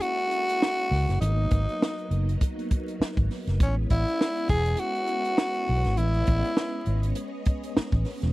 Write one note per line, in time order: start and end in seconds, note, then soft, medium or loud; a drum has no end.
0.00 1.17 G#3 medium
0.00 3.56 A#3 medium
0.00 1.16 C#4 medium
0.00 1.16 E4 medium
0.00 1.20 F#4 loud
0.00 closed hi-hat medium
0.18 closed hi-hat soft
0.31 closed hi-hat medium
0.49 closed hi-hat medium
0.62 snare loud
0.79 closed hi-hat soft
0.91 1.05 C#2 loud
0.91 snare soft
0.91 open hi-hat medium
1.09 1.19 F#1 medium
1.09 snare soft
1.09 closed hi-hat medium
1.21 1.45 G#1 loud
1.21 3.58 F#3 medium
1.21 8.32 B3 medium
1.21 2.36 D#4 medium
1.21 3.58 D#4 medium
1.21 closed hi-hat medium
1.51 1.65 G#1 medium
1.51 kick medium
1.51 closed hi-hat medium
1.69 closed hi-hat soft
1.82 snare loud
1.98 closed hi-hat soft
2.11 2.35 F#1 medium
2.11 closed hi-hat medium
2.29 closed hi-hat medium
2.41 kick medium
2.41 closed hi-hat medium
2.59 closed hi-hat soft
2.71 kick medium
2.71 closed hi-hat medium
2.88 closed hi-hat medium
3.00 muted fingered electric bass stroke soft
3.00 snare loud
3.17 3.27 G#1 medium
3.17 kick medium
3.17 closed hi-hat soft
3.31 snare soft
3.31 open hi-hat medium
3.47 3.60 F#1 medium
3.47 snare soft
3.47 closed hi-hat medium
3.60 3.84 A1 loud
3.60 8.33 G#3 medium
3.60 8.33 C#4 medium
3.60 3.75 C#4 medium
3.60 5.95 E4 medium
3.60 kick loud
3.60 closed hi-hat medium
3.90 4.04 A1 medium
3.90 4.46 E4 loud
3.90 kick medium
3.90 closed hi-hat medium
4.08 closed hi-hat soft
4.21 snare loud
4.36 closed hi-hat soft
4.49 4.73 E1 medium
4.49 4.80 G#4 loud
4.49 kick medium
4.49 closed hi-hat medium
4.66 closed hi-hat medium
4.77 5.99 F#4 loud
4.77 closed hi-hat loud
4.95 closed hi-hat soft
5.07 closed hi-hat medium
5.25 closed hi-hat medium
5.38 snare loud
5.54 closed hi-hat soft
5.67 5.82 B1 medium
5.67 open hi-hat medium
5.85 5.96 G#1 medium
5.85 snare soft
5.85 closed hi-hat medium
5.97 6.22 A1 loud
5.97 7.17 E4 medium
5.97 8.33 D#5 medium
5.97 closed hi-hat medium
6.14 closed hi-hat soft
6.27 6.41 A1 medium
6.27 kick medium
6.27 closed hi-hat medium
6.45 closed hi-hat soft
6.57 snare loud
6.86 7.11 G#1 medium
6.86 closed hi-hat medium
7.03 closed hi-hat medium
7.15 closed hi-hat loud
7.45 kick medium
7.45 closed hi-hat medium
7.63 closed hi-hat medium
7.77 muted fingered electric bass stroke soft
7.77 snare loud
7.92 8.03 A1 medium
7.92 kick medium
7.92 closed hi-hat soft
8.05 snare soft
8.05 open hi-hat medium
8.22 8.33 E1 medium
8.22 snare soft
8.22 closed hi-hat medium